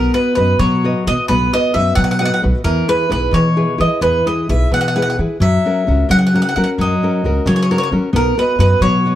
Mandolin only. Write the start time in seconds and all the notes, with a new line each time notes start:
Already playing: A#4
0.14 B4
0.35 B4
0.59 C#5
1.07 D#5
1.28 B4
1.54 D#5
1.74 E5
1.95 F#5
2.04 F#5
2.11 F#5
2.19 F#5
2.25 F#5
2.34 F#5
2.64 A#4
2.89 B4
3.12 B4
3.34 C#5
3.81 D#5
4.02 B4
4.27 D#5
4.49 E5
4.74 F#5
4.81 F#5
4.88 F#5
4.96 F#5
5.02 F#5
5.10 F#5
5.42 E5
6.11 F#5
6.19 F#5
6.27 F#5
6.36 F#5
6.42 F#5
6.49 F#5
6.56 F#5
6.64 F#5
6.81 D#5
7.47 C#5
7.56 C#5
7.63 C#5
7.71 C#5
7.78 C#5
7.83 C#5
8.16 A#4
8.39 B4
8.60 B4
8.82 C#5